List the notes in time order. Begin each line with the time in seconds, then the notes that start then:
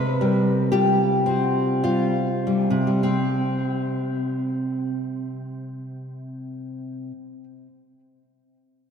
Already playing: C3 B4
0.21 G3
0.72 G3 F4 G4
1.26 C4
1.84 G3 F4
2.47 G3
2.70 C3
2.87 G3
3.03 C4